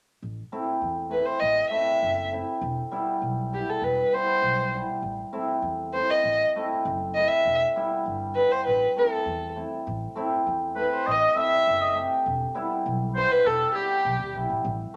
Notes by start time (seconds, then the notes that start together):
0.22 A1
0.52 A3 C4 E4
0.82 E2
1.10 A3 C4 E4 B4
1.26 C5
1.40 A1 D#5
1.70 A3 C4 E4 E5
2.03 F#1
2.31 A3 C4 E4
2.61 E1
2.91 G3 B3 E4
3.22 B1
3.52 G3 B3 E4 G4
3.69 A4
3.82 E1 B4
4.13 G3 B3 E4 C5
4.42 B1
4.74 G3 B3 E4
5.02 A1
5.33 A3 C4 E4
5.62 E2
5.93 A3 C4 E4 C5
6.10 D#5
6.24 A1
6.56 A3 C4 E4
6.85 F#1
7.15 A3 C4 E4 D#5
7.28 E5
7.45 E1
7.76 G3 B3 E4
8.06 G1
8.35 G3 B3 E4 B4
8.52 C5
8.67 A1 B4
8.96 A3 C4 E4 A4
9.25 E2
9.56 A3 C4 E4
9.87 A1
10.16 A3 C4 E4
10.47 E2
10.75 A3 C4 E4 B4
10.96 C5
11.06 A1 D#5
11.11 D#5
11.35 A3 C4 E4 E5
11.40 E5
11.67 F#1
11.81 D#5
11.94 A3 C4 G4
12.26 E1
12.55 G3 B3 E4
12.86 B1
13.15 G3 B3 E4 C5
13.32 B4
13.45 E1 A4
13.75 G3 B3 G4
14.05 B1
14.19 D#2
14.35 B1 G3 B3 E4
14.50 A1
14.65 A1